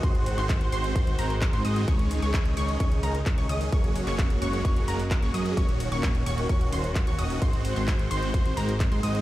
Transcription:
<<
  \new Staff \with { instrumentName = "Synth pluck" } { \time 4/4 \key aes \mixolydian \tempo 4 = 130 c'''8. c'''8. c'''8 c'''8 bes''16 r8 c'''16 ees'''8 | des'''8. des'''8. des'''8 des'''8 bes''16 r8 des'''16 ees'''8 | des'''8. des'''8. des'''8 des'''8 bes''16 r8 des'''16 ees'''8 | des'''8. des'''8. des'''8 des'''8 c'''16 r8 des'''16 ees'''8 |
c'''8. c'''8. c'''8 c'''8 bes''16 r8 c'''16 ees'''8 | }
  \new Staff \with { instrumentName = "String section" } { \time 4/4 \key aes \mixolydian <aes ges' c''>1 | <des ees'>1 | <aes bes ges'>1 | <ees des' ges'>1 |
<aes c''>1 | }
  \new Staff \with { instrumentName = "Supersaw synth" } { \time 4/4 \key aes \mixolydian <ees aes c' ges'>8. <ees aes c' ges' c''>8. <ees aes c' ges' c''>8 <ees aes c' ges' c''>8 <ees aes c' ges' bes'>16 r8 <ees aes c' ges' c''>16 <ees aes c' ges' ees''>8 | <ees aes des' aes' des''>8. <ees aes des' aes' des''>8. <ees aes des' aes' des''>8 <ees aes des' aes' des''>8 <ees aes des' aes' bes'>16 r8 <ees aes des' aes' des''>16 <ees aes des' aes' ees''>8 | <bes aes'>8. <ges bes des' aes' des''>8. <ges bes des' aes' des''>8 <ges bes des' aes' des''>8 <ges bes des' aes' bes'>16 r8 <ges bes des' aes' des''>16 <ges bes des' aes' ees''>8 | <ees bes des' ges' des''>8. <ees bes des' ges' des''>8. <ees bes des' ges' des''>8 <ees bes des' ges' des''>8 <ees bes des' ges' c''>16 r8 <ees bes des' ges' des''>16 <ees bes des' ges' ees''>8 |
<ees aes c' ges' c''>8. <ees aes c' ges' c''>8. <ees aes c' ges' c''>8 <ees aes c' ges' c''>8 <ees aes c' ges' bes'>16 r8 <ees aes c' ges' c''>16 <ees aes c' ges' ees''>8 | }
  \new Staff \with { instrumentName = "Analog synth bass" } { \clef bass \time 4/4 \key aes \mixolydian aes,,8. aes,,8. aes,,8 aes,,8 aes,,8. aes,16 aes,8 | des,8. des,8. des,8 des,8 des,8. des,16 des,8 | ges,,8. ges,,8. ges,,8 ges,,8 ges,,8. ges,,16 ges,8 | ees,,8. ees,,8. ees,,8 ees,,8 ees,,8. ees,16 ees,,8 |
aes,,8. aes,,8. aes,,8 aes,,8 aes,,8. aes,16 aes,8 | }
  \new DrumStaff \with { instrumentName = "Drums" } \drummode { \time 4/4 <hh bd>16 hh16 hho16 <hc hh>16 <hc hh bd>16 hh16 hho16 hh16 <hh bd>16 hh16 hho16 hh16 <hc hh bd>16 hh16 hho16 hh16 | <hh bd>16 hh16 hho16 hh16 <hc hh bd>16 hh16 hho16 hh16 <hh bd>16 hh16 hho16 hh16 <hc hh bd>16 hh16 hho16 hho16 | <hh bd>16 hh16 hho16 <hc hh>16 <hc hh bd>16 hh16 hho16 hh16 <hh bd>16 hh16 hho16 hho16 <hc hh bd>16 hh16 hho16 hh16 | <hh bd cymr>16 hh16 <hho cymr>16 hh16 <hc hh bd cymr>16 hh16 <hho cymr>16 hh16 <hh bd cymr>16 hh16 <hho cymr>16 hh16 <hc hh bd cymr>16 hh16 <hho cymr>16 hho16 |
<hh bd cymr>16 hh16 <hho cymr>16 <hc hh>16 <hc hh bd cymr>16 hh16 <hho cymr>16 hh16 <hh bd cymr>16 hh16 <hho cymr>16 hh16 <hc hh bd cymr>16 hh16 <hho cymr>16 hh16 | }
>>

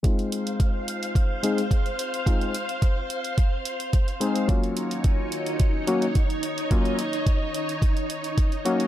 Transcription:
<<
  \new Staff \with { instrumentName = "String machine" } { \time 4/4 \key aes \mixolydian \tempo 4 = 108 <c'' f''>1~ | <c'' f''>1 | <ees' des''>1~ | <ees' des''>1 | }
  \new Staff \with { instrumentName = "Electric grand piano" } { \time 4/4 \key aes \mixolydian <aes c' ees' f'>2~ <aes c' ees' f'>8 <aes c' ees' aes'>8 r4 | <aes c' ees' f'>8 r2. <aes c' ees' aes'>8 | <ges bes des' f'>2~ <ges bes des' f'>8 <ges bes des' ges'>8 r4 | <ges bes des' f'>8 r2. <ges bes des' ges'>8 | }
  \new DrumStaff \with { instrumentName = "Drums" } \drummode { \time 4/4 <hh bd>16 hh16 hh16 hh16 <hh bd>8 hh16 hh16 <hh bd>8 hh16 hh16 <hh bd>16 hh16 hh16 hh16 | <hh bd>16 hh16 hh16 hh16 <hh bd>8 hh16 hh16 <hh bd>8 hh16 hh16 <hh bd>16 hh16 hh16 hh16 | <hh bd>16 hh16 hh16 hh16 <hh bd>8 hh16 hh16 <hh bd>8 hh16 hh16 <hh bd>16 hh16 hh16 hh16 | <hh bd>16 hh16 hh16 hh16 <hh bd>8 hh16 hh16 <hh bd>16 hh16 hh16 hh16 <hh bd>16 hh16 hh16 hh16 | }
>>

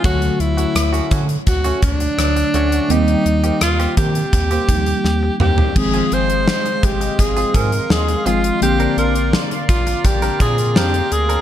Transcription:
<<
  \new Staff \with { instrumentName = "Analog synth pad" } { \time 4/4 \key aes \lydian \tempo 4 = 84 << { r1 | r1 | <f'' c'''>1~ | <f'' c'''>1 | } \\ { r1 | r1 | <aes ees''>1 | <bes' d''>1 | } >> }
  \new Staff \with { instrumentName = "Alto saxophone" } { \time 4/4 \key aes \lydian fis'8 e'4 r8 fis'8 d'4. | ees'4 f'8 g'2 g'8 | aes'8 c''4 g'8 aes'8 bes'8 aes'8 f'8 | g'8 bes'8 r8 f'8 g'8 aes'8 g'8 aes'8 | }
  \new Staff \with { instrumentName = "Clean electric guitar" } { \time 4/4 \key aes \lydian <a cis' fis'>8 r16 <a cis' fis'>16 r16 <a cis' fis'>16 <a cis' fis'>16 r8 <a cis' fis'>16 r4 <a cis' fis'>16 <a cis' fis'>16 | <bes c' g'>8 r16 <bes c' g'>16 r16 <bes c' g'>16 <bes c' g'>16 r8 <bes c' g'>16 r4 <bes c' g'>16 <bes c' g'>16 | r16 <c' f' aes'>16 <c' f' aes'>16 r4. <c' f' aes'>16 <c' f' aes'>16 r8. <c' f' aes'>16 r16 | r16 <c' d' bes'>16 <c' d' bes'>16 r4. <c' d' bes'>16 <c' d' bes'>16 r16 <c' d' bes'>16 r8 <c' d' bes'>16 | }
  \new Staff \with { instrumentName = "FM electric piano" } { \clef bass \time 4/4 \key aes \lydian <d fis a cis''>2. <d fis a cis''>4 | <ees ges g bes c'>2~ <ees ges g bes c'>8 <ees f g bes ees'>4. | <ees f aes c'>2.~ <ees f aes c'>8 <ees f aes c'>8 | <d f bes c'>1 | }
  \new Staff \with { instrumentName = "Analog synth bass" } { \clef bass \time 4/4 \key aes \lydian d,8 d,8 d,8 d8 d,8 d,8 d,8 d,8 | ees,8 ees,8 ees,8 ees8 ees,8 ees,8 ees,8 ees,8 | aes,,8 aes,,8. r16 aes,,8 aes,,8 aes,8 ees,8 aes,,8 | bes,,8 bes,,8. r16 bes,,8 bes,,8 bes,8 f,8 d,8 | }
  \new DrumStaff \with { instrumentName = "Drums" } \drummode { \time 4/4 <hh bd>16 hh16 hh16 hh16 <hh ss>16 hh16 <hh bd>16 hh16 <hh bd>16 hh16 <hh bd>16 hh16 <hh ss>16 hh16 hh16 hh16 | hh16 hh16 hh16 hh16 <hh ss>16 hh16 <hh bd>16 hh16 <hh bd>16 hh16 <hh bd>16 hh16 sn8 toml16 tomfh16 | <cymc bd>16 hh16 hh16 hh16 sn16 hh16 <hh bd>16 hh16 <hh bd>16 hh16 <hh bd>16 hh16 sn16 hh16 hh16 hh16 | hh16 hh16 hh16 hh16 sn16 hh16 <hh bd>16 hh16 <hh bd>16 hh16 <hh bd>16 hh16 sn16 hh16 hh16 hh16 | }
>>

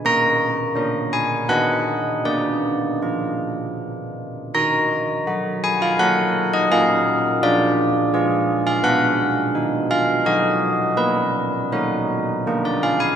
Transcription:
\new Staff \with { instrumentName = "Church bells" } { \time 3/4 \key ees \minor \tempo 4 = 82 << { bes''4. aes''8 fis''4 | d''2~ d''8 r8 | bes''4. aes''16 f''16 ges''8. ees''16 | f''4 d''4.~ d''16 f''16 |
fis''4. f''8 dis''4 | ces''4 bes'4~ bes'16 d''16 f''16 aes''16 | } \\ { bes4 <d' bes'>4 <b dis' dis''>4 | bes4 f'2 | ees'4 ges'4 <ges' bes'>4 | bes4 f'4 <f' aes'>4 |
b4 dis'4 <dis' fis'>4 | bes4 <ees' ges'>4 <bes d' f'>4 | } >> }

